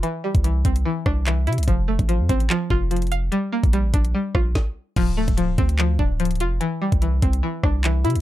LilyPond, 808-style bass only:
\new Staff \with { instrumentName = "808-style bass" } { \clef bass \time 4/4 \key d \minor \tempo 4 = 146 r8. c,8. c,8 r8 c,4 c16 c,16 | f,,8. a,,8 f,16 a,,8 r8 f,,4. | r8. bes,,8 a,,16 bes,,8 r8 bes,,8 r4 | d,,8. d,,8. d,4 d,,4 f,,8 |
r8. c,8. c,8 r8 c,4 c16 c,16 | }